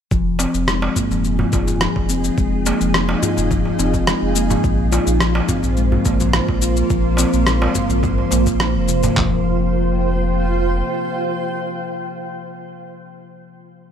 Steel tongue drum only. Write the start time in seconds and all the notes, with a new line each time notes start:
0.11 F3
0.40 C4
0.96 A#3
1.11 F3
1.53 F4
1.81 F3
2.09 C4
2.38 G#3
2.66 A#3
2.81 F3
3.23 F4
3.51 F3
3.79 C4
4.07 G#3
4.35 A#3
4.50 F3
4.92 F4
5.21 F3
5.49 C4
5.77 G#3
6.06 A#3
6.20 F3
6.62 F4
6.90 F3
7.18 C4
7.46 G#3
7.75 A#3
7.90 F3
8.32 A#3
8.60 F3
8.89 C3
9.17 F3